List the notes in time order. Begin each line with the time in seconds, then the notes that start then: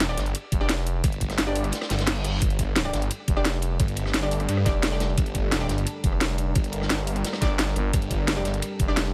Already playing: G1
0.00 snare, closed hi-hat, ride
0.09 D4 G4 D5
0.17 G1, snare, closed hi-hat, ride
0.26 closed hi-hat
0.35 closed hi-hat, ride
0.52 F1, kick, closed hi-hat, ride
0.61 D4 G4 D5, cross-stick
0.69 snare, closed hi-hat, ride
0.78 snare
0.87 closed hi-hat, ride
1.04 G1, kick, closed hi-hat, ride
1.12 closed hi-hat
1.21 kick, closed hi-hat, ride
1.30 cross-stick, snare, closed hi-hat
1.38 G1, snare, closed hi-hat, ride
1.47 D4 G4 D5
1.56 open hi-hat, ride
1.64 cross-stick, closed hi-hat, ride
1.72 snare, closed hi-hat, ride, reverse cymbal
1.81 cross-stick, snare, ride
1.90 G1, snare, closed hi-hat, ride
1.98 snare, closed hi-hat, ride
2.07 snare, closed hi-hat, ride
2.24 cross-stick, closed hi-hat, ride
2.42 G1 G3 D4 A4, kick, closed hi-hat, ride
2.50 closed hi-hat
2.59 kick, closed hi-hat, ride
2.76 snare, closed hi-hat, ride
2.85 D4 G4 D5
2.93 G1, snare, closed hi-hat, ride
3.02 closed hi-hat
3.11 closed hi-hat, ride
3.28 F1, kick, closed hi-hat, ride
3.37 D4 G4 D5, cross-stick
3.45 snare, closed hi-hat, ride
3.54 snare
3.62 closed hi-hat, ride
3.80 G1, kick, closed hi-hat, ride
3.88 closed hi-hat
3.96 closed hi-hat, ride
4.05 cross-stick, snare
4.14 G1, snare, closed hi-hat, ride
4.23 D4 G4 D5
4.31 open hi-hat, ride
4.40 cross-stick, closed hi-hat, ride
4.49 G2, closed hi-hat, ride
4.57 cross-stick
4.66 F1 D4 G4 D5, kick, snare, closed hi-hat, ride
4.83 snare, closed hi-hat, ride
4.92 D4 G4 D5, snare
5.00 cross-stick, snare, closed hi-hat, ride
5.18 G1 A#4, kick, closed hi-hat, ride
5.26 closed hi-hat
5.35 kick, closed hi-hat, ride
5.52 snare, closed hi-hat, ride
5.61 D4 G4 D5
5.69 G1, snare, closed hi-hat, ride
5.78 closed hi-hat
5.87 closed hi-hat, ride
6.04 F1, kick, closed hi-hat, ride
6.12 cross-stick
6.21 snare, closed hi-hat, ride
6.29 snare
6.38 closed hi-hat, ride
6.55 G1, kick, closed hi-hat, ride
6.64 closed hi-hat
6.72 closed hi-hat, ride
6.81 cross-stick, snare
6.90 G1, snare, closed hi-hat, ride
7.07 open hi-hat, ride
7.16 cross-stick, closed hi-hat, ride
7.24 snare, closed hi-hat, ride
7.33 cross-stick, snare, ride
7.42 G1 D4 G4 D5, kick, snare, closed hi-hat, ride
7.59 snare, closed hi-hat, ride
7.68 snare
7.76 G1, cross-stick, closed hi-hat, ride
7.93 G1 C4 A4, kick, closed hi-hat, ride
8.02 closed hi-hat
8.11 kick, closed hi-hat, ride
8.28 snare, closed hi-hat, ride
8.37 D4 G4 D5
8.45 G1, snare, closed hi-hat, ride
8.54 closed hi-hat
8.62 closed hi-hat, ride
8.79 F1, kick, closed hi-hat, ride
8.88 D4 G4 D5, cross-stick
8.97 snare, closed hi-hat, ride
9.05 snare